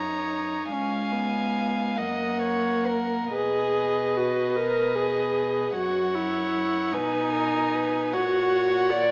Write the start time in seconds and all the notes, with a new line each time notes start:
Already playing: F#2 D#4 C#5 A#5
0.71 C#2 C#4 F5 G#5
1.13 B3
1.96 F#2 A#3 D#5 F#5
2.42 C#5
2.87 A#4
3.33 B2 G#4 B4 D#5
4.16 F#4
4.56 A#4 D#5
4.95 G#4
5.76 F#2 F#4 C#5 F#5
6.15 E4
6.92 B2 D#4 B4 G#5
7.33 A#4
7.75 B4
8.13 A#2 F#4 C#5 F#5
8.90 D5